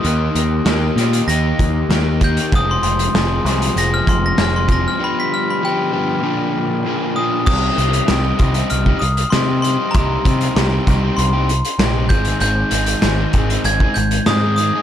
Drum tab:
CC |----------------|----------------|----------------|x---------------|
HH |x-x-x-xxx-x-x-xx|x-xxx-xxx-x-x-x-|----------------|--xxx-xxx-xxx-x-|
SD |----o-o-----o---|----o-o-----o---|----------------|----o-------o---|
BD |----------o---o-|o---------o---o-|----------------|o-----o--o------|

CC |----------------|----------------|
HH |x-xxx-x-x-xxx-xx|x-xxx-xxx-xxx-x-|
SD |----o-------o---|----o-------o---|
BD |o-o---o-------o-|------o--o------|